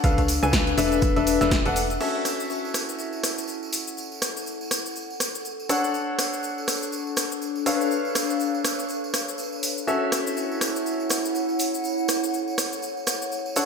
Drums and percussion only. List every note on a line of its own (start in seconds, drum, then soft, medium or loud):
0.04 kick loud
0.04 closed hi-hat loud
0.04 tambourine soft
0.04 shaker soft
0.18 kick medium
0.18 closed hi-hat soft
0.18 tambourine soft
0.28 open hi-hat loud
0.28 tambourine medium
0.28 shaker medium
0.43 closed hi-hat soft
0.43 shaker soft
0.53 kick loud
0.53 snare loud
0.53 closed hi-hat loud
0.53 tambourine soft
0.53 shaker soft
0.66 closed hi-hat soft
0.66 tambourine soft
0.78 open hi-hat loud
0.78 tambourine medium
0.78 shaker medium
0.92 closed hi-hat soft
0.92 tambourine soft
0.92 shaker soft
1.02 kick loud
1.02 closed hi-hat loud
1.02 tambourine soft
1.02 shaker soft
1.16 closed hi-hat soft
1.16 tambourine soft
1.27 open hi-hat loud
1.27 tambourine medium
1.27 shaker medium
1.41 snare soft
1.41 closed hi-hat soft
1.41 tambourine soft
1.41 shaker soft
1.51 kick loud
1.51 snare loud
1.51 closed hi-hat loud
1.51 tambourine soft
1.51 shaker soft
1.66 closed hi-hat soft
1.66 tambourine soft
1.76 open hi-hat loud
1.76 tambourine medium
1.76 shaker medium
1.90 closed hi-hat soft
1.90 tambourine soft
1.90 shaker soft
2.01 tambourine medium
2.01 crash medium
2.01 shaker soft
2.25 cross-stick medium
2.25 open hi-hat loud
2.25 tambourine medium
2.25 shaker medium
2.39 tambourine soft
2.39 shaker soft
2.50 tambourine soft
2.50 shaker soft
2.65 tambourine soft
2.74 cross-stick medium
2.74 open hi-hat loud
2.74 tambourine medium
2.74 shaker medium
2.89 tambourine soft
2.89 shaker soft
2.98 tambourine soft
2.98 shaker soft
3.13 tambourine soft
3.23 cross-stick medium
3.23 open hi-hat loud
3.23 tambourine medium
3.23 shaker medium
3.38 tambourine soft
3.38 shaker soft
3.48 tambourine soft
3.48 shaker soft
3.62 tambourine soft
3.72 open hi-hat medium
3.72 tambourine medium
3.72 shaker medium
3.87 tambourine soft
3.87 shaker soft
3.97 tambourine soft
3.97 shaker soft
4.12 tambourine soft
4.22 cross-stick medium
4.22 open hi-hat loud
4.22 tambourine medium
4.22 shaker medium
4.36 tambourine soft
4.36 shaker soft
4.46 tambourine soft
4.46 shaker soft
4.61 tambourine soft
4.71 cross-stick medium
4.71 open hi-hat loud
4.71 tambourine medium
4.71 shaker medium
4.85 tambourine soft
4.85 shaker soft
4.96 tambourine soft
4.96 shaker soft
5.10 tambourine soft
5.20 cross-stick medium
5.20 open hi-hat loud
5.20 tambourine medium
5.20 shaker medium
5.34 tambourine soft
5.34 shaker soft
5.45 tambourine soft
5.45 shaker soft
5.60 tambourine soft
5.69 open hi-hat medium
5.69 tambourine medium
5.69 shaker medium
5.84 tambourine soft
5.84 shaker soft
5.94 tambourine soft
5.94 shaker soft
6.19 cross-stick medium
6.19 open hi-hat loud
6.19 tambourine medium
6.19 shaker medium
6.32 tambourine soft
6.32 shaker soft
6.43 tambourine soft
6.43 shaker soft
6.58 tambourine soft
6.68 cross-stick medium
6.68 open hi-hat loud
6.68 tambourine medium
6.68 shaker medium
6.81 tambourine soft
6.81 shaker soft
6.92 tambourine medium
6.92 shaker soft
7.07 tambourine soft
7.16 cross-stick medium
7.16 open hi-hat loud
7.16 tambourine medium
7.16 shaker medium
7.30 tambourine soft
7.30 shaker soft
7.42 tambourine medium
7.42 shaker soft
7.56 tambourine soft
7.66 open hi-hat loud
7.66 tambourine medium
7.66 shaker medium
7.80 tambourine soft
7.80 shaker soft
7.91 tambourine medium
7.91 shaker soft
8.05 tambourine soft
8.15 cross-stick medium
8.15 open hi-hat loud
8.15 tambourine medium
8.15 shaker medium
8.29 tambourine soft
8.29 shaker soft
8.40 tambourine soft
8.40 shaker soft
8.54 tambourine soft
8.64 cross-stick medium
8.64 open hi-hat loud
8.64 tambourine medium
8.64 shaker medium
8.79 tambourine soft
8.79 shaker soft
8.89 tambourine soft
8.89 shaker soft
9.04 tambourine soft
9.14 cross-stick medium
9.14 open hi-hat loud
9.14 tambourine medium
9.14 shaker medium
9.28 tambourine soft
9.28 shaker soft
9.38 tambourine medium
9.38 shaker soft
9.52 tambourine soft
9.63 open hi-hat loud
9.63 tambourine medium
9.63 shaker medium
9.77 tambourine soft
9.77 shaker soft
9.88 tambourine soft
9.88 shaker soft
10.12 cross-stick medium
10.12 open hi-hat loud
10.12 tambourine medium
10.12 shaker medium
10.26 tambourine soft
10.26 shaker soft
10.37 tambourine soft
10.37 shaker soft
10.51 tambourine soft
10.61 cross-stick medium
10.61 open hi-hat loud
10.61 tambourine medium
10.61 shaker medium
10.75 tambourine soft
10.75 shaker soft
10.86 tambourine soft
10.86 shaker soft
11.00 tambourine soft
11.09 cross-stick medium
11.09 open hi-hat loud
11.09 tambourine medium
11.09 shaker medium
11.24 tambourine soft
11.24 shaker soft
11.35 tambourine soft
11.35 shaker soft
11.49 tambourine soft
11.59 open hi-hat medium
11.59 tambourine medium
11.59 shaker medium
11.74 tambourine soft
11.74 shaker soft
11.84 tambourine soft
11.84 shaker soft
11.98 tambourine soft
12.08 cross-stick medium
12.08 open hi-hat loud
12.08 tambourine medium
12.08 shaker medium
12.23 tambourine soft
12.23 shaker soft
12.34 tambourine soft
12.34 shaker soft
12.48 tambourine soft
12.58 cross-stick medium
12.58 open hi-hat loud
12.58 tambourine medium
12.58 shaker medium
12.72 tambourine soft
12.72 shaker soft
12.82 tambourine soft
12.82 shaker soft
12.97 tambourine soft
13.07 cross-stick medium
13.07 open hi-hat loud
13.07 tambourine medium
13.07 shaker medium
13.21 tambourine soft
13.21 shaker soft
13.32 tambourine soft
13.32 shaker soft
13.46 tambourine soft
13.56 open hi-hat medium
13.56 tambourine medium
13.56 shaker medium